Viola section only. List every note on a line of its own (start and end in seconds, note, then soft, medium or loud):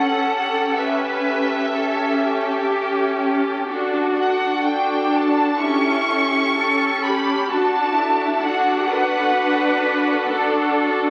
0.00 0.64 C#4 soft
0.77 1.62 C#4 soft
1.75 2.59 C#4 soft
2.71 3.58 C#4 soft
3.69 4.54 D4 soft
4.67 5.51 D4 soft
5.63 6.46 C#4 soft
6.58 7.40 C#4 soft
7.51 8.32 D4 medium
8.44 9.26 D4 medium
9.36 10.20 D4 medium
10.31 11.10 D4 medium